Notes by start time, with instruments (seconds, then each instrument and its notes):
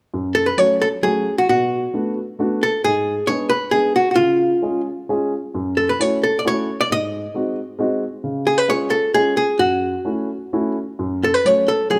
0.14 upright piano F#2
0.35 hollow-body jazz guitar A4
0.46 hollow-body jazz guitar B4
0.58 upright piano F#3 A3 C#4 F#4, hollow-body jazz guitar C#5
0.82 hollow-body jazz guitar A4
1.03 upright piano F#3 A3 C#4 F#4, hollow-body jazz guitar G#4
1.38 hollow-body jazz guitar F#4
1.49 upright piano B2, hollow-body jazz guitar F#4
1.94 upright piano A3 B3 D4 F#4
2.39 upright piano A3 B3 D4 F#4
2.63 hollow-body jazz guitar A4
2.84 upright piano G#2, hollow-body jazz guitar G#4
3.27 upright piano G#3 B3 D4 G#4, hollow-body jazz guitar C#5
3.50 hollow-body jazz guitar B4
3.71 upright piano G#3 B3 D4 G#4, hollow-body jazz guitar G#4
3.96 hollow-body jazz guitar F#4
4.11 hollow-body jazz guitar F#4
4.16 upright piano C#3, hollow-body jazz guitar F4
4.62 upright piano G#3 C#4 F4 G#4
5.09 upright piano G#3 C#4 F4 G#4
5.54 upright piano F#2
5.77 hollow-body jazz guitar A4
5.89 hollow-body jazz guitar B4
5.99 upright piano A3 C#4 E4 F#4, hollow-body jazz guitar C#5
6.23 hollow-body jazz guitar A4
6.39 hollow-body jazz guitar D5
6.44 upright piano A3 C#4 E4 F#4, hollow-body jazz guitar C#5
6.81 hollow-body jazz guitar D5
6.90 upright piano G#2, hollow-body jazz guitar D#5
7.34 upright piano G#3 C4 D#4 F#4
7.79 upright piano G#3 C4 D#4 F#4
8.24 upright piano C#3
8.47 hollow-body jazz guitar G#4
8.58 hollow-body jazz guitar B4
8.68 upright piano G#3 C#4 F4 G#4, hollow-body jazz guitar C#5
8.90 hollow-body jazz guitar A4
9.14 upright piano G#3 C#4 F4 G#4, hollow-body jazz guitar G#4
9.37 hollow-body jazz guitar G#4
9.59 upright piano F#2, hollow-body jazz guitar F#4
10.05 upright piano A3 C#4 E4 F#4
10.53 upright piano A3 C#4 E4 F#4
10.99 upright piano F#2
11.24 hollow-body jazz guitar A4
11.34 hollow-body jazz guitar B4
11.45 upright piano F#3 A3 C#4 F#4, hollow-body jazz guitar C#5
11.68 hollow-body jazz guitar A4
11.90 upright piano F#3 A3 C#4 F#4, hollow-body jazz guitar G#4